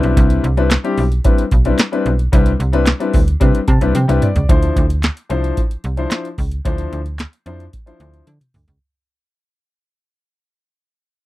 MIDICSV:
0, 0, Header, 1, 4, 480
1, 0, Start_track
1, 0, Tempo, 540541
1, 147, Time_signature, 4, 2, 24, 8
1, 9994, End_track
2, 0, Start_track
2, 0, Title_t, "Grand piano"
2, 0, Program_c, 0, 0
2, 0, Note_on_c, 0, 55, 95
2, 0, Note_on_c, 0, 60, 90
2, 0, Note_on_c, 0, 62, 89
2, 0, Note_on_c, 0, 64, 94
2, 0, Note_on_c, 0, 71, 104
2, 386, Note_off_c, 0, 55, 0
2, 387, Note_off_c, 0, 60, 0
2, 388, Note_off_c, 0, 62, 0
2, 389, Note_off_c, 0, 64, 0
2, 389, Note_off_c, 0, 71, 0
2, 506, Note_on_c, 0, 55, 86
2, 507, Note_on_c, 0, 60, 85
2, 509, Note_on_c, 0, 62, 82
2, 511, Note_on_c, 0, 64, 84
2, 512, Note_on_c, 0, 71, 105
2, 607, Note_off_c, 0, 55, 0
2, 607, Note_off_c, 0, 60, 0
2, 608, Note_off_c, 0, 62, 0
2, 609, Note_off_c, 0, 64, 0
2, 610, Note_off_c, 0, 71, 0
2, 744, Note_on_c, 0, 55, 88
2, 745, Note_on_c, 0, 60, 79
2, 747, Note_on_c, 0, 62, 76
2, 748, Note_on_c, 0, 64, 75
2, 750, Note_on_c, 0, 67, 102
2, 896, Note_off_c, 0, 55, 0
2, 897, Note_off_c, 0, 60, 0
2, 897, Note_off_c, 0, 62, 0
2, 898, Note_off_c, 0, 64, 0
2, 899, Note_off_c, 0, 67, 0
2, 1104, Note_on_c, 0, 55, 82
2, 1106, Note_on_c, 0, 60, 77
2, 1107, Note_on_c, 0, 62, 80
2, 1108, Note_on_c, 0, 64, 81
2, 1112, Note_on_c, 0, 71, 94
2, 1256, Note_off_c, 0, 55, 0
2, 1257, Note_off_c, 0, 60, 0
2, 1257, Note_off_c, 0, 62, 0
2, 1258, Note_off_c, 0, 64, 0
2, 1260, Note_off_c, 0, 71, 0
2, 1466, Note_on_c, 0, 55, 85
2, 1467, Note_on_c, 0, 60, 80
2, 1470, Note_on_c, 0, 62, 81
2, 1471, Note_on_c, 0, 64, 84
2, 1473, Note_on_c, 0, 71, 91
2, 1567, Note_off_c, 0, 55, 0
2, 1567, Note_off_c, 0, 60, 0
2, 1569, Note_off_c, 0, 62, 0
2, 1569, Note_off_c, 0, 64, 0
2, 1571, Note_off_c, 0, 71, 0
2, 1703, Note_on_c, 0, 55, 87
2, 1706, Note_on_c, 0, 60, 83
2, 1707, Note_on_c, 0, 62, 85
2, 1708, Note_on_c, 0, 64, 74
2, 1710, Note_on_c, 0, 71, 100
2, 1856, Note_off_c, 0, 55, 0
2, 1857, Note_off_c, 0, 60, 0
2, 1857, Note_off_c, 0, 62, 0
2, 1858, Note_off_c, 0, 64, 0
2, 1859, Note_off_c, 0, 71, 0
2, 2062, Note_on_c, 0, 55, 92
2, 2065, Note_on_c, 0, 60, 84
2, 2066, Note_on_c, 0, 62, 80
2, 2067, Note_on_c, 0, 64, 81
2, 2071, Note_on_c, 0, 71, 95
2, 2215, Note_off_c, 0, 55, 0
2, 2216, Note_off_c, 0, 60, 0
2, 2217, Note_off_c, 0, 62, 0
2, 2218, Note_off_c, 0, 64, 0
2, 2219, Note_off_c, 0, 71, 0
2, 2420, Note_on_c, 0, 55, 86
2, 2423, Note_on_c, 0, 60, 86
2, 2423, Note_on_c, 0, 62, 91
2, 2426, Note_on_c, 0, 64, 87
2, 2428, Note_on_c, 0, 71, 103
2, 2524, Note_off_c, 0, 55, 0
2, 2525, Note_off_c, 0, 62, 0
2, 2526, Note_off_c, 0, 60, 0
2, 2527, Note_off_c, 0, 64, 0
2, 2528, Note_off_c, 0, 71, 0
2, 2661, Note_on_c, 0, 55, 84
2, 2663, Note_on_c, 0, 60, 77
2, 2665, Note_on_c, 0, 62, 83
2, 2668, Note_on_c, 0, 64, 83
2, 2668, Note_on_c, 0, 71, 94
2, 2814, Note_off_c, 0, 55, 0
2, 2815, Note_off_c, 0, 60, 0
2, 2817, Note_off_c, 0, 62, 0
2, 2818, Note_off_c, 0, 64, 0
2, 2818, Note_off_c, 0, 71, 0
2, 3020, Note_on_c, 0, 55, 86
2, 3023, Note_on_c, 0, 60, 82
2, 3024, Note_on_c, 0, 62, 79
2, 3026, Note_on_c, 0, 64, 73
2, 3028, Note_on_c, 0, 71, 95
2, 3174, Note_off_c, 0, 55, 0
2, 3175, Note_off_c, 0, 60, 0
2, 3176, Note_off_c, 0, 62, 0
2, 3177, Note_off_c, 0, 64, 0
2, 3178, Note_off_c, 0, 71, 0
2, 3266, Note_on_c, 0, 81, 70
2, 3383, Note_on_c, 0, 55, 90
2, 3386, Note_on_c, 0, 60, 78
2, 3387, Note_on_c, 0, 62, 82
2, 3389, Note_on_c, 0, 64, 76
2, 3391, Note_on_c, 0, 71, 92
2, 3485, Note_off_c, 0, 55, 0
2, 3487, Note_off_c, 0, 60, 0
2, 3487, Note_off_c, 0, 62, 0
2, 3488, Note_off_c, 0, 64, 0
2, 3489, Note_off_c, 0, 71, 0
2, 3490, Note_off_c, 0, 81, 0
2, 3506, Note_on_c, 0, 79, 72
2, 3622, Note_on_c, 0, 55, 92
2, 3624, Note_on_c, 0, 60, 80
2, 3626, Note_on_c, 0, 62, 77
2, 3627, Note_on_c, 0, 64, 88
2, 3629, Note_on_c, 0, 71, 102
2, 3730, Note_off_c, 0, 79, 0
2, 3748, Note_on_c, 0, 74, 82
2, 3775, Note_off_c, 0, 55, 0
2, 3776, Note_off_c, 0, 60, 0
2, 3777, Note_off_c, 0, 62, 0
2, 3778, Note_off_c, 0, 64, 0
2, 3779, Note_off_c, 0, 71, 0
2, 3971, Note_off_c, 0, 74, 0
2, 3985, Note_on_c, 0, 53, 78
2, 3987, Note_on_c, 0, 62, 80
2, 3988, Note_on_c, 0, 64, 83
2, 3990, Note_on_c, 0, 72, 97
2, 4287, Note_off_c, 0, 53, 0
2, 4288, Note_off_c, 0, 62, 0
2, 4288, Note_off_c, 0, 64, 0
2, 4289, Note_off_c, 0, 72, 0
2, 4702, Note_on_c, 0, 53, 89
2, 4704, Note_on_c, 0, 62, 75
2, 4707, Note_on_c, 0, 64, 76
2, 4710, Note_on_c, 0, 72, 94
2, 4955, Note_off_c, 0, 53, 0
2, 4956, Note_off_c, 0, 62, 0
2, 4958, Note_off_c, 0, 64, 0
2, 4959, Note_off_c, 0, 72, 0
2, 5303, Note_on_c, 0, 53, 80
2, 5305, Note_on_c, 0, 62, 81
2, 5307, Note_on_c, 0, 64, 84
2, 5311, Note_on_c, 0, 72, 97
2, 5555, Note_off_c, 0, 53, 0
2, 5557, Note_off_c, 0, 62, 0
2, 5557, Note_off_c, 0, 64, 0
2, 5559, Note_off_c, 0, 72, 0
2, 5903, Note_on_c, 0, 53, 91
2, 5905, Note_on_c, 0, 62, 84
2, 5908, Note_on_c, 0, 64, 79
2, 5910, Note_on_c, 0, 72, 96
2, 6206, Note_off_c, 0, 53, 0
2, 6207, Note_off_c, 0, 62, 0
2, 6208, Note_off_c, 0, 64, 0
2, 6209, Note_off_c, 0, 72, 0
2, 6622, Note_on_c, 0, 53, 78
2, 6625, Note_on_c, 0, 62, 78
2, 6626, Note_on_c, 0, 64, 77
2, 6629, Note_on_c, 0, 72, 90
2, 6775, Note_off_c, 0, 53, 0
2, 6776, Note_off_c, 0, 62, 0
2, 6777, Note_off_c, 0, 64, 0
2, 6778, Note_off_c, 0, 72, 0
2, 6981, Note_on_c, 0, 53, 77
2, 6984, Note_on_c, 0, 62, 69
2, 6985, Note_on_c, 0, 64, 79
2, 6988, Note_on_c, 0, 72, 88
2, 7335, Note_off_c, 0, 53, 0
2, 7336, Note_off_c, 0, 62, 0
2, 7337, Note_off_c, 0, 64, 0
2, 7338, Note_off_c, 0, 72, 0
2, 9994, End_track
3, 0, Start_track
3, 0, Title_t, "FM bass"
3, 0, Program_c, 1, 39
3, 29, Note_on_c, 1, 35, 102
3, 127, Note_off_c, 1, 35, 0
3, 150, Note_on_c, 1, 36, 127
3, 347, Note_off_c, 1, 36, 0
3, 388, Note_on_c, 1, 36, 114
3, 684, Note_off_c, 1, 36, 0
3, 868, Note_on_c, 1, 35, 100
3, 1066, Note_off_c, 1, 35, 0
3, 1347, Note_on_c, 1, 35, 101
3, 1545, Note_off_c, 1, 35, 0
3, 1828, Note_on_c, 1, 35, 96
3, 2025, Note_off_c, 1, 35, 0
3, 2067, Note_on_c, 1, 36, 127
3, 2265, Note_off_c, 1, 36, 0
3, 2306, Note_on_c, 1, 36, 106
3, 2603, Note_off_c, 1, 36, 0
3, 2788, Note_on_c, 1, 38, 88
3, 2986, Note_off_c, 1, 38, 0
3, 3028, Note_on_c, 1, 48, 96
3, 3127, Note_off_c, 1, 48, 0
3, 3267, Note_on_c, 1, 48, 111
3, 3366, Note_off_c, 1, 48, 0
3, 3388, Note_on_c, 1, 36, 83
3, 3487, Note_off_c, 1, 36, 0
3, 3508, Note_on_c, 1, 48, 108
3, 3607, Note_off_c, 1, 48, 0
3, 3630, Note_on_c, 1, 36, 90
3, 3728, Note_off_c, 1, 36, 0
3, 3869, Note_on_c, 1, 37, 91
3, 3967, Note_off_c, 1, 37, 0
3, 3988, Note_on_c, 1, 38, 113
3, 4186, Note_off_c, 1, 38, 0
3, 4230, Note_on_c, 1, 38, 111
3, 4525, Note_off_c, 1, 38, 0
3, 4708, Note_on_c, 1, 36, 100
3, 4906, Note_off_c, 1, 36, 0
3, 5188, Note_on_c, 1, 36, 97
3, 5386, Note_off_c, 1, 36, 0
3, 5667, Note_on_c, 1, 37, 98
3, 5865, Note_off_c, 1, 37, 0
3, 5908, Note_on_c, 1, 38, 110
3, 6105, Note_off_c, 1, 38, 0
3, 6148, Note_on_c, 1, 38, 91
3, 6444, Note_off_c, 1, 38, 0
3, 6625, Note_on_c, 1, 41, 95
3, 6824, Note_off_c, 1, 41, 0
3, 7104, Note_on_c, 1, 38, 107
3, 7303, Note_off_c, 1, 38, 0
3, 7345, Note_on_c, 1, 50, 100
3, 7445, Note_off_c, 1, 50, 0
3, 7586, Note_on_c, 1, 38, 99
3, 7686, Note_off_c, 1, 38, 0
3, 7705, Note_on_c, 1, 37, 94
3, 7805, Note_off_c, 1, 37, 0
3, 9994, End_track
4, 0, Start_track
4, 0, Title_t, "Drums"
4, 30, Note_on_c, 9, 42, 54
4, 118, Note_off_c, 9, 42, 0
4, 149, Note_on_c, 9, 36, 127
4, 152, Note_on_c, 9, 42, 98
4, 238, Note_off_c, 9, 36, 0
4, 241, Note_off_c, 9, 42, 0
4, 267, Note_on_c, 9, 42, 57
4, 356, Note_off_c, 9, 42, 0
4, 393, Note_on_c, 9, 42, 71
4, 481, Note_off_c, 9, 42, 0
4, 510, Note_on_c, 9, 42, 54
4, 599, Note_off_c, 9, 42, 0
4, 628, Note_on_c, 9, 42, 98
4, 629, Note_on_c, 9, 39, 91
4, 635, Note_on_c, 9, 38, 114
4, 717, Note_off_c, 9, 42, 0
4, 718, Note_off_c, 9, 39, 0
4, 724, Note_off_c, 9, 38, 0
4, 751, Note_on_c, 9, 42, 57
4, 840, Note_off_c, 9, 42, 0
4, 866, Note_on_c, 9, 46, 80
4, 955, Note_off_c, 9, 46, 0
4, 992, Note_on_c, 9, 42, 51
4, 1081, Note_off_c, 9, 42, 0
4, 1105, Note_on_c, 9, 42, 85
4, 1109, Note_on_c, 9, 36, 114
4, 1194, Note_off_c, 9, 42, 0
4, 1197, Note_off_c, 9, 36, 0
4, 1229, Note_on_c, 9, 42, 56
4, 1318, Note_off_c, 9, 42, 0
4, 1344, Note_on_c, 9, 42, 69
4, 1347, Note_on_c, 9, 36, 95
4, 1433, Note_off_c, 9, 42, 0
4, 1436, Note_off_c, 9, 36, 0
4, 1465, Note_on_c, 9, 42, 56
4, 1554, Note_off_c, 9, 42, 0
4, 1585, Note_on_c, 9, 42, 99
4, 1588, Note_on_c, 9, 39, 96
4, 1594, Note_on_c, 9, 38, 113
4, 1674, Note_off_c, 9, 42, 0
4, 1676, Note_off_c, 9, 39, 0
4, 1682, Note_off_c, 9, 38, 0
4, 1713, Note_on_c, 9, 42, 55
4, 1802, Note_off_c, 9, 42, 0
4, 1827, Note_on_c, 9, 42, 63
4, 1916, Note_off_c, 9, 42, 0
4, 1947, Note_on_c, 9, 42, 57
4, 2036, Note_off_c, 9, 42, 0
4, 2068, Note_on_c, 9, 36, 127
4, 2068, Note_on_c, 9, 42, 103
4, 2157, Note_off_c, 9, 36, 0
4, 2157, Note_off_c, 9, 42, 0
4, 2183, Note_on_c, 9, 42, 56
4, 2272, Note_off_c, 9, 42, 0
4, 2310, Note_on_c, 9, 42, 69
4, 2399, Note_off_c, 9, 42, 0
4, 2427, Note_on_c, 9, 42, 60
4, 2516, Note_off_c, 9, 42, 0
4, 2543, Note_on_c, 9, 42, 95
4, 2545, Note_on_c, 9, 39, 85
4, 2551, Note_on_c, 9, 38, 109
4, 2632, Note_off_c, 9, 42, 0
4, 2634, Note_off_c, 9, 39, 0
4, 2640, Note_off_c, 9, 38, 0
4, 2668, Note_on_c, 9, 42, 63
4, 2757, Note_off_c, 9, 42, 0
4, 2784, Note_on_c, 9, 46, 82
4, 2788, Note_on_c, 9, 36, 98
4, 2873, Note_off_c, 9, 46, 0
4, 2877, Note_off_c, 9, 36, 0
4, 2911, Note_on_c, 9, 42, 52
4, 2999, Note_off_c, 9, 42, 0
4, 3026, Note_on_c, 9, 42, 85
4, 3029, Note_on_c, 9, 36, 108
4, 3115, Note_off_c, 9, 42, 0
4, 3117, Note_off_c, 9, 36, 0
4, 3150, Note_on_c, 9, 42, 55
4, 3239, Note_off_c, 9, 42, 0
4, 3265, Note_on_c, 9, 42, 67
4, 3267, Note_on_c, 9, 36, 94
4, 3354, Note_off_c, 9, 42, 0
4, 3356, Note_off_c, 9, 36, 0
4, 3386, Note_on_c, 9, 42, 53
4, 3475, Note_off_c, 9, 42, 0
4, 3506, Note_on_c, 9, 42, 100
4, 3509, Note_on_c, 9, 48, 63
4, 3595, Note_off_c, 9, 42, 0
4, 3598, Note_off_c, 9, 48, 0
4, 3630, Note_on_c, 9, 47, 65
4, 3634, Note_on_c, 9, 42, 58
4, 3719, Note_off_c, 9, 47, 0
4, 3722, Note_off_c, 9, 42, 0
4, 3748, Note_on_c, 9, 42, 67
4, 3750, Note_on_c, 9, 45, 95
4, 3837, Note_off_c, 9, 42, 0
4, 3839, Note_off_c, 9, 45, 0
4, 3869, Note_on_c, 9, 42, 57
4, 3870, Note_on_c, 9, 43, 99
4, 3958, Note_off_c, 9, 42, 0
4, 3959, Note_off_c, 9, 43, 0
4, 3988, Note_on_c, 9, 36, 122
4, 3991, Note_on_c, 9, 42, 98
4, 4077, Note_off_c, 9, 36, 0
4, 4080, Note_off_c, 9, 42, 0
4, 4107, Note_on_c, 9, 42, 57
4, 4196, Note_off_c, 9, 42, 0
4, 4229, Note_on_c, 9, 36, 85
4, 4232, Note_on_c, 9, 42, 68
4, 4318, Note_off_c, 9, 36, 0
4, 4321, Note_off_c, 9, 42, 0
4, 4352, Note_on_c, 9, 42, 58
4, 4441, Note_off_c, 9, 42, 0
4, 4468, Note_on_c, 9, 42, 91
4, 4470, Note_on_c, 9, 39, 89
4, 4476, Note_on_c, 9, 38, 107
4, 4557, Note_off_c, 9, 42, 0
4, 4558, Note_off_c, 9, 39, 0
4, 4564, Note_off_c, 9, 38, 0
4, 4591, Note_on_c, 9, 42, 61
4, 4679, Note_off_c, 9, 42, 0
4, 4707, Note_on_c, 9, 42, 75
4, 4795, Note_off_c, 9, 42, 0
4, 4832, Note_on_c, 9, 42, 53
4, 4920, Note_off_c, 9, 42, 0
4, 4948, Note_on_c, 9, 42, 78
4, 4949, Note_on_c, 9, 36, 103
4, 5036, Note_off_c, 9, 42, 0
4, 5037, Note_off_c, 9, 36, 0
4, 5071, Note_on_c, 9, 42, 51
4, 5160, Note_off_c, 9, 42, 0
4, 5185, Note_on_c, 9, 42, 66
4, 5273, Note_off_c, 9, 42, 0
4, 5304, Note_on_c, 9, 42, 52
4, 5393, Note_off_c, 9, 42, 0
4, 5424, Note_on_c, 9, 42, 101
4, 5426, Note_on_c, 9, 39, 89
4, 5432, Note_on_c, 9, 38, 112
4, 5512, Note_off_c, 9, 42, 0
4, 5515, Note_off_c, 9, 39, 0
4, 5521, Note_off_c, 9, 38, 0
4, 5550, Note_on_c, 9, 42, 57
4, 5639, Note_off_c, 9, 42, 0
4, 5665, Note_on_c, 9, 46, 64
4, 5666, Note_on_c, 9, 36, 86
4, 5754, Note_off_c, 9, 46, 0
4, 5755, Note_off_c, 9, 36, 0
4, 5785, Note_on_c, 9, 42, 53
4, 5874, Note_off_c, 9, 42, 0
4, 5907, Note_on_c, 9, 36, 123
4, 5908, Note_on_c, 9, 42, 94
4, 5996, Note_off_c, 9, 36, 0
4, 5997, Note_off_c, 9, 42, 0
4, 6023, Note_on_c, 9, 42, 57
4, 6112, Note_off_c, 9, 42, 0
4, 6151, Note_on_c, 9, 42, 66
4, 6239, Note_off_c, 9, 42, 0
4, 6267, Note_on_c, 9, 42, 58
4, 6356, Note_off_c, 9, 42, 0
4, 6386, Note_on_c, 9, 42, 91
4, 6388, Note_on_c, 9, 39, 97
4, 6394, Note_on_c, 9, 38, 110
4, 6475, Note_off_c, 9, 42, 0
4, 6477, Note_off_c, 9, 39, 0
4, 6482, Note_off_c, 9, 38, 0
4, 6510, Note_on_c, 9, 42, 58
4, 6598, Note_off_c, 9, 42, 0
4, 6625, Note_on_c, 9, 42, 75
4, 6714, Note_off_c, 9, 42, 0
4, 6750, Note_on_c, 9, 42, 54
4, 6839, Note_off_c, 9, 42, 0
4, 6867, Note_on_c, 9, 42, 85
4, 6868, Note_on_c, 9, 36, 104
4, 6955, Note_off_c, 9, 42, 0
4, 6957, Note_off_c, 9, 36, 0
4, 6990, Note_on_c, 9, 42, 46
4, 7079, Note_off_c, 9, 42, 0
4, 7105, Note_on_c, 9, 42, 65
4, 7194, Note_off_c, 9, 42, 0
4, 7225, Note_on_c, 9, 42, 51
4, 7314, Note_off_c, 9, 42, 0
4, 7344, Note_on_c, 9, 42, 98
4, 7347, Note_on_c, 9, 48, 64
4, 7433, Note_off_c, 9, 42, 0
4, 7436, Note_off_c, 9, 48, 0
4, 7466, Note_on_c, 9, 47, 57
4, 7470, Note_on_c, 9, 42, 58
4, 7555, Note_off_c, 9, 47, 0
4, 7559, Note_off_c, 9, 42, 0
4, 7584, Note_on_c, 9, 46, 61
4, 7586, Note_on_c, 9, 45, 86
4, 7673, Note_off_c, 9, 46, 0
4, 7675, Note_off_c, 9, 45, 0
4, 7706, Note_on_c, 9, 42, 58
4, 7707, Note_on_c, 9, 43, 90
4, 7794, Note_off_c, 9, 42, 0
4, 7796, Note_off_c, 9, 43, 0
4, 9994, End_track
0, 0, End_of_file